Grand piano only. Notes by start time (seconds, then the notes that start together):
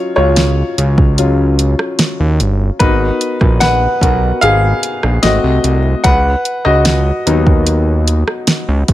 Already playing: F#3 C#4 F4 C#5
0.16 F4 C#5
1.18 F#3 C#4 F4
2.79 B3 D#4 F#4 A#4 B4
3.60 B4 F#5
4.02 B3 F#4 A#4
4.41 G#4 F5
5.23 A3 C4 F#4 D#5
6.04 B4 F#5
6.65 F#4 D#5
7.26 F#3 B3 D#4